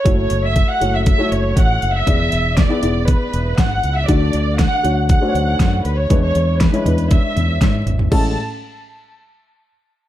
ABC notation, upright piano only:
X:1
M:4/4
L:1/16
Q:1/4=119
K:A
V:1 name="Upright piano"
[A,EFc]6 [A,EFc]3 [A,EFc]6 z | [B,EGd]4- [B,EGd] [B,EGd] [B,EGd]6- [B,EGd] z3 | [A,DFd]6 [A,DFc]3 [A,DF=c^c]6 z | [G,DEB]4- [G,DEB] [G,DEc] [G,DEB]6- [G,DEB] z3 |
[G,CEA]2 z12 z2 |]
V:2 name="Upright piano" clef=bass
z16 | E,6 z8 z2 | D,6 z8 z2 | E,6 z8 z2 |
A,,,2 z12 z2 |]